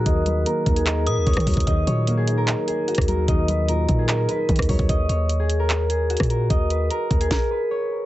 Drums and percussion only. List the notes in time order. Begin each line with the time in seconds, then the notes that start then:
0.06 kick, closed hi-hat
0.26 closed hi-hat
0.46 closed hi-hat
0.66 kick, closed hi-hat
0.76 closed hi-hat
0.86 clap, closed hi-hat
1.07 closed hi-hat
1.27 kick, closed hi-hat
1.33 kick, cross-stick, closed hi-hat
1.40 closed hi-hat
1.47 kick, closed hi-hat, open hi-hat
1.54 kick, closed hi-hat
1.60 closed hi-hat
1.67 kick, closed hi-hat
1.87 closed hi-hat
2.07 closed hi-hat
2.27 closed hi-hat
2.48 clap, closed hi-hat
2.68 closed hi-hat
2.88 closed hi-hat
2.95 kick, cross-stick, closed hi-hat
3.02 closed hi-hat
3.08 closed hi-hat
3.28 kick, closed hi-hat
3.48 closed hi-hat
3.69 closed hi-hat
3.89 kick, closed hi-hat
4.09 clap, closed hi-hat
4.29 closed hi-hat
4.49 kick, closed hi-hat
4.56 kick, cross-stick, closed hi-hat
4.62 closed hi-hat
4.69 kick, open hi-hat
4.79 kick
4.89 kick, closed hi-hat
5.09 closed hi-hat
5.29 closed hi-hat
5.50 closed hi-hat
5.70 clap, closed hi-hat
5.90 closed hi-hat
6.10 closed hi-hat
6.17 kick, cross-stick, closed hi-hat
6.23 closed hi-hat
6.30 closed hi-hat
6.50 kick, closed hi-hat
6.70 closed hi-hat
6.91 closed hi-hat
7.11 kick, closed hi-hat
7.21 closed hi-hat
7.31 kick, snare